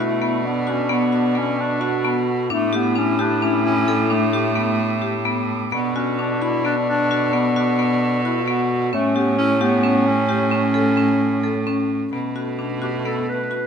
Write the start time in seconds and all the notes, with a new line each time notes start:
Already playing: B2 E4 A4 D5 C#6
0.00 A3 F#4
0.22 B3
0.44 B3 D4
0.67 C#4 F#4
0.89 B3
1.12 F#4
1.35 B3 C#4
1.60 D4
1.81 F#4
2.05 B3
2.50 A2 A3 D4 E4 G5 D6
2.73 B3 G4
2.96 C#4 D4
3.19 D4 G4
3.42 C#4 D4
3.66 C#4
3.88 A4
4.10 A3 D4
4.33 G4
4.55 B3
5.02 G4
5.25 B3
5.71 B2 B3 D4 A4 D5 C#6
5.96 C#4 F#4
6.19 D4
6.42 E4 F#4
6.65 B3 D4
6.89 D4
7.11 F#4
7.33 B3
7.56 F#4
7.79 B3
8.24 E4 F#4
8.40 F4
8.47 B3 F#4
8.92 A2 A3 C#4 G5 C#6
9.15 B3 G4
9.38 C#4 E4
9.61 B3 G4
9.84 C#4
10.07 C#4
10.29 G4
10.51 C#4
10.74 A4
10.97 C#4
11.44 A4
11.67 C#4
12.13 B2 A3 B3
12.36 F#4
12.59 D4
12.82 F#4 G4
13.05 B3 A4
13.29 B4
13.51 F#4